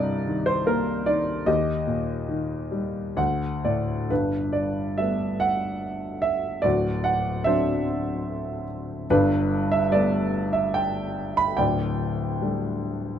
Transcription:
0.00 1.43 C2 medium
0.00 1.03 G2 medium
0.00 1.43 C3 medium
0.00 0.22 A#4 medium
0.00 0.48 D5 medium
0.00 1.46 D#5 loud
0.26 1.05 D#3 medium
0.46 0.65 C5 medium
0.66 1.45 A#3 medium
0.66 1.08 A#4 medium
1.06 1.46 D#3 medium
1.06 1.44 D5 medium
1.46 3.13 D#2 medium
1.46 3.14 G4 medium
1.46 3.14 D#5 medium
1.87 3.14 A#2 medium
2.29 3.15 D#3 medium
2.71 3.16 G3 medium
3.17 4.07 D2 medium
3.17 3.61 F#5 medium
3.65 4.09 A2 medium
3.65 4.07 D5 medium
4.10 6.61 G1 soft
4.10 6.61 G2 medium
4.10 5.38 D4 soft
4.10 4.51 B4 medium
4.53 4.99 D5 medium
4.98 6.60 G3 soft
4.98 6.60 A3 soft
4.98 6.61 B3 soft
4.98 5.43 E5 medium
5.40 6.19 F#5 medium
6.22 6.61 E5 medium
6.62 9.06 D1 medium
6.62 9.05 D2 medium
6.62 7.83 F#4 medium
6.62 7.01 D5 medium
7.04 7.47 F#5 medium
7.44 9.05 F#3 medium
7.44 9.06 C4 soft
7.44 9.06 D4 medium
7.44 8.65 C5 medium
7.44 8.63 E5 medium
9.10 11.54 G1 medium
9.10 11.54 G2 medium
9.10 10.28 D4 medium
9.10 9.68 B4 medium
9.72 9.92 E5 medium
9.91 11.54 G3 medium
9.91 11.54 A3 soft
9.91 11.54 B3 medium
9.91 10.49 D5 medium
10.53 10.75 E5 medium
10.74 11.39 G5 medium
11.37 11.56 B5 loud
11.57 13.19 D1 medium
11.57 13.19 D2 medium
11.57 13.19 D5 medium
11.57 13.19 G5 medium
12.41 13.19 G3 soft
12.41 13.19 A3 soft
12.41 13.19 D4 soft

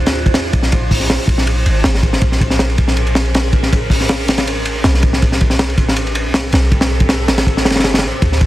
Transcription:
0.00 0.27 D2 loud
0.00 0.68 D4 medium
0.00 0.68 E4 medium
0.00 0.68 F4 medium
0.00 4.43 C5 medium
0.06 snare loud
0.06 ride medium
0.15 ride soft
0.26 0.52 E2 medium
0.26 kick medium
0.26 ride medium
0.34 snare loud
0.34 ride medium
0.53 1.18 A#1 medium
0.53 kick medium
0.53 ride medium
0.63 snare medium
0.72 4.43 C#4 medium
0.72 4.43 G#4 medium
0.72 4.43 A#4 medium
0.72 kick loud
0.72 ride medium
0.91 kick medium
0.91 open hi-hat medium
1.00 snare soft
1.10 snare loud
1.10 ride medium
1.27 1.65 A#1 loud
1.27 kick medium
1.27 ride medium
1.38 snare medium
1.47 ride medium
1.66 1.83 G#1 medium
1.66 ride medium
1.84 2.20 G#1 medium
1.84 snare loud
1.84 ride medium
1.95 snare medium
2.03 kick loud
2.03 ride medium
2.13 snare soft
2.21 2.77 A#1 loud
2.21 kick loud
2.21 ride medium
2.32 snare soft
2.41 kick loud
2.41 ride medium
2.50 snare medium
2.59 snare loud
2.59 ride medium
2.70 ride soft
2.78 4.30 A#1 loud
2.78 kick loud
2.78 ride medium
2.88 snare medium
2.97 ride medium
3.07 ride soft
3.15 snare loud
3.15 ride medium
3.26 ride soft
3.35 snare loud
3.35 ride medium
3.53 kick medium
3.53 ride medium
3.63 snare soft
3.73 kick loud
3.73 ride medium
3.90 kick medium
3.90 open hi-hat medium
4.00 snare soft
4.09 snare loud
4.09 ride medium
4.28 4.83 A1 loud
4.28 snare loud
4.28 ride medium
4.38 snare loud
4.38 ride medium
4.47 8.18 C4 medium
4.47 8.18 G4 medium
4.47 8.18 A4 medium
4.47 5.95 B4 medium
4.47 ride medium
4.65 ride medium
4.84 5.79 B1 loud
4.84 snare loud
4.84 ride loud
4.94 snare medium
5.03 kick loud
5.03 ride medium
5.13 snare medium
5.22 kick loud
5.22 ride medium
5.32 snare soft
5.41 kick loud
5.41 ride medium
5.50 snare soft
5.59 snare loud
5.59 ride medium
5.70 ride soft
5.78 6.27 A1 loud
5.78 kick medium
5.78 ride medium
5.88 snare medium
5.96 8.46 C5 medium
5.96 ride loud
6.07 ride soft
6.15 ride medium
6.25 6.52 B1 medium
6.34 snare loud
6.34 ride medium
6.52 7.29 B1 medium
6.52 snare loud
6.52 ride medium
6.72 kick medium
6.72 ride medium
6.81 snare loud
6.81 ride medium
7.00 kick medium
7.00 ride medium
7.09 snare loud
7.09 ride medium
7.28 7.67 A1 loud
7.28 snare loud
7.28 ride medium
7.38 snare loud
7.38 ride medium
7.47 kick medium
7.47 ride medium
7.57 snare medium
7.65 8.05 G1 loud
7.65 snare loud
7.65 ride medium
7.70 snare medium
7.70 ride medium
7.75 snare medium
7.75 ride medium
7.79 snare medium
7.79 ride medium
7.84 snare loud
7.84 ride medium
7.94 snare medium
7.94 ride medium
7.99 snare medium
7.99 ride medium
8.03 8.12 A1 loud
8.22 8.46 D2 loud
8.22 kick loud
8.22 ride medium
8.32 snare soft
8.41 kick loud
8.41 ride medium

